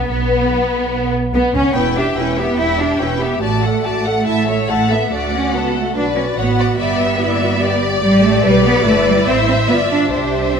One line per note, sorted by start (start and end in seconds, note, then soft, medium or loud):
0.09 1.12 B1 medium
0.09 1.11 B3 medium
0.09 1.12 B3 medium
1.33 1.41 B1 medium
1.33 1.53 B3 medium
1.33 1.43 B3 medium
1.33 1.54 B3 medium
1.54 1.62 C#2 medium
1.54 1.75 C#4 medium
1.54 1.63 C#4 medium
1.54 1.76 C#4 medium
1.74 2.12 E1 medium
1.74 1.96 B3 medium
1.74 1.95 E4 soft
1.74 1.95 B4 soft
1.74 1.94 G5 soft
1.96 2.04 D4 medium
1.96 2.17 G4 soft
1.96 2.16 E5 soft
2.16 2.53 E1 medium
2.16 2.37 C#4 medium
2.16 2.37 E4 soft
2.16 2.38 B4 soft
2.16 2.37 G5 soft
2.37 2.58 B3 medium
2.37 2.58 G4 soft
2.37 2.59 G4 soft
2.37 2.58 E5 soft
2.57 2.94 E1 medium
2.57 2.77 E4 soft
2.57 2.79 E4 medium
2.57 2.78 B4 soft
2.57 2.77 G5 soft
2.77 3.00 D4 medium
2.77 3.00 G4 soft
2.77 2.99 E5 soft
2.99 3.37 E1 soft
2.99 3.21 C#4 medium
2.99 3.21 E4 soft
2.99 3.21 B4 soft
2.99 3.20 G5 soft
3.20 3.42 B3 medium
3.20 3.42 G4 soft
3.20 3.42 E5 soft
3.42 3.79 A1 soft
3.42 4.67 A3 medium
3.42 3.62 F#4 soft
3.42 3.62 D5 soft
3.42 3.62 A5 soft
3.63 3.84 A4 soft
3.63 3.84 F#5 soft
3.83 4.22 A1 soft
3.83 4.06 F#4 soft
3.83 4.04 D5 soft
3.83 4.05 A5 soft
4.05 4.27 A4 soft
4.05 4.26 F#5 soft
4.05 4.27 F#5 medium
4.26 4.64 A1 medium
4.26 4.46 E4 soft
4.26 4.47 E5 medium
4.26 4.46 A5 soft
4.46 4.69 A4 soft
4.46 4.69 C#5 soft
4.46 4.68 E5 soft
4.69 5.07 A1 soft
4.69 4.90 A3 medium
4.69 4.90 E4 soft
4.69 4.91 F#5 medium
4.69 4.91 A5 soft
4.90 5.12 B3 medium
4.90 5.12 A4 soft
4.90 5.12 E5 soft
5.11 5.51 D2 soft
5.11 5.33 A3 medium
5.11 5.92 F#4 soft
5.11 5.52 D5 soft
5.11 5.92 F#5 soft
5.33 5.54 C#4 medium
5.53 5.95 C#2 soft
5.53 5.75 B3 medium
5.53 5.96 A4 soft
5.75 5.96 A3 medium
5.95 6.36 B1 medium
5.95 6.04 D4 medium
5.95 6.35 F#4 soft
5.95 6.37 B4 soft
5.95 6.37 D5 soft
6.16 6.24 C#4 medium
6.36 6.78 A1 soft
6.36 6.78 B3 medium
6.36 6.78 F#4 soft
6.36 6.46 C#5 soft
6.36 6.78 F#5 soft
6.59 6.67 D5 soft
6.78 8.01 G1 medium
6.78 7.80 B3 medium
6.78 7.20 G4 medium
6.78 6.99 D5 medium
6.78 7.19 E5 soft
7.00 7.21 E5 medium
7.20 7.41 E4 medium
7.20 8.02 D5 medium
7.20 7.62 E5 soft
7.41 7.62 F#4 medium
7.62 8.02 G4 soft
7.62 8.43 D5 medium
8.03 8.44 A1 medium
8.03 8.22 G3 medium
8.03 8.43 G4 medium
8.03 8.43 D5 medium
8.24 8.44 A3 medium
8.44 8.85 B1 medium
8.44 8.65 G3 medium
8.44 8.84 G4 medium
8.44 8.85 B4 medium
8.44 9.25 D5 medium
8.65 8.85 B3 medium
8.85 9.27 G1 medium
8.85 9.06 A3 medium
8.85 9.69 E4 medium
8.85 9.26 B4 medium
9.06 9.27 G3 medium
9.26 9.69 A1 medium
9.26 9.35 C4 medium
9.26 9.69 C5 medium
9.26 10.12 E5 medium
9.48 9.56 C4 medium
9.69 10.12 G1 medium
9.69 9.77 B3 medium
9.69 10.12 F4 soft
9.69 10.12 D5 medium
9.90 10.11 D4 medium
10.12 10.60 C2 soft
10.12 10.55 D4 medium
10.12 10.60 G4 soft
10.12 10.60 C5 soft
10.12 10.60 E5 soft
10.56 10.60 C4 medium